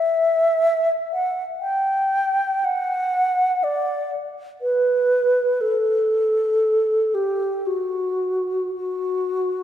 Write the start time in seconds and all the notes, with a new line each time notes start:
Already playing: E5
1.13 F#5
1.60 G5
2.65 F#5
3.64 D5
4.61 B4
5.61 A4
7.14 G4
7.67 F#4
8.75 F#4